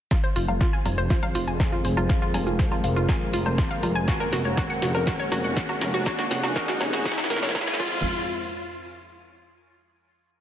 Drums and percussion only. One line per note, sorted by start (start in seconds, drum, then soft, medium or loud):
0.11 kick loud
0.11 snare soft
0.11 low conga medium
0.11 low woodblock soft
0.11 shaker soft
0.24 shaker soft
0.36 open hi-hat loud
0.36 shaker medium
0.48 low conga medium
0.48 low woodblock soft
0.48 shaker soft
0.61 kick loud
0.61 snare soft
0.61 shaker soft
0.73 shaker soft
0.86 open hi-hat loud
0.86 low conga medium
0.86 low woodblock soft
0.86 shaker medium
0.98 shaker soft
1.10 kick loud
1.10 snare medium
1.10 shaker soft
1.23 low conga medium
1.23 low woodblock soft
1.23 shaker soft
1.35 open hi-hat loud
1.35 shaker medium
1.48 shaker soft
1.60 kick loud
1.60 snare medium
1.60 low conga medium
1.60 low woodblock soft
1.60 shaker soft
1.72 shaker soft
1.85 open hi-hat loud
1.85 shaker medium
1.97 low conga medium
1.97 low woodblock soft
1.97 shaker soft
2.09 kick loud
2.09 snare medium
2.09 shaker soft
2.22 shaker soft
2.34 open hi-hat loud
2.34 low conga medium
2.34 low woodblock soft
2.34 shaker medium
2.47 shaker soft
2.59 kick loud
2.59 snare medium
2.59 shaker soft
2.72 low conga medium
2.72 low woodblock medium
2.72 shaker soft
2.84 open hi-hat loud
2.84 shaker medium
2.96 shaker soft
3.09 kick loud
3.09 snare medium
3.09 low conga medium
3.09 low woodblock medium
3.09 shaker soft
3.21 shaker soft
3.33 open hi-hat loud
3.33 shaker medium
3.46 low conga medium
3.46 low woodblock medium
3.46 shaker soft
3.58 kick loud
3.58 snare medium
3.58 shaker soft
3.71 shaker soft
3.83 open hi-hat loud
3.83 low conga medium
3.83 low woodblock medium
3.83 shaker medium
3.96 shaker soft
4.08 kick loud
4.08 snare medium
4.08 shaker soft
4.20 low conga medium
4.20 low woodblock medium
4.20 shaker soft
4.33 snare medium
4.33 open hi-hat loud
4.33 shaker medium
4.45 shaker soft
4.57 kick loud
4.57 snare medium
4.57 low conga medium
4.57 low woodblock medium
4.57 shaker soft
4.70 shaker soft
4.82 snare medium
4.82 open hi-hat loud
4.82 shaker medium
4.95 low conga medium
4.95 low woodblock medium
4.95 shaker soft
5.07 kick loud
5.07 snare medium
5.07 shaker soft
5.19 shaker soft
5.32 snare medium
5.32 open hi-hat loud
5.32 low conga medium
5.32 low woodblock medium
5.32 shaker medium
5.44 shaker soft
5.57 kick loud
5.57 snare medium
5.57 shaker soft
5.69 low conga medium
5.69 low woodblock medium
5.69 shaker soft
5.81 snare medium
5.81 open hi-hat loud
5.81 shaker medium
5.94 shaker soft
6.06 kick loud
6.06 snare medium
6.06 low conga medium
6.06 low woodblock medium
6.06 shaker soft
6.19 snare medium
6.19 shaker soft
6.31 snare medium
6.31 open hi-hat loud
6.31 shaker medium
6.44 snare medium
6.44 low conga medium
6.44 low woodblock medium
6.44 shaker soft
6.56 kick loud
6.56 snare medium
6.56 shaker soft
6.68 snare medium
6.68 shaker soft
6.81 snare loud
6.81 open hi-hat loud
6.81 low conga loud
6.81 low woodblock medium
6.81 shaker medium
6.93 snare medium
6.93 shaker soft
7.05 kick loud
7.05 snare loud
7.05 shaker soft
7.12 snare medium
7.18 snare medium
7.18 low conga medium
7.18 low woodblock medium
7.18 shaker soft
7.24 snare medium
7.30 snare loud
7.30 open hi-hat loud
7.30 shaker medium
7.36 snare medium
7.43 snare medium
7.43 shaker soft
7.49 snare medium
7.55 kick loud
7.55 snare loud
7.55 low conga loud
7.55 low woodblock medium
7.55 shaker soft
7.61 snare loud
7.67 snare medium
7.67 shaker soft
7.74 snare medium
7.80 kick loud
7.80 crash medium